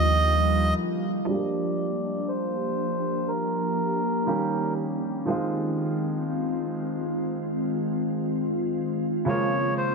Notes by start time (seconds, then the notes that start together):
Already playing: D#2 D3 D#3 F3 G3 A#3 D4 F4 G4 D#5
1.25 F3 G3 G#3 A#3 D4 G4 D5
1.30 G4
1.34 A#3
2.28 C5
3.28 A#4
4.26 D#3 G3 A#3 C#4 G4
5.25 D#3 F3 G#3 C4 F4
5.30 F4
9.25 C#3 F3 G#3 A#3 C#5
9.30 F4
9.78 C5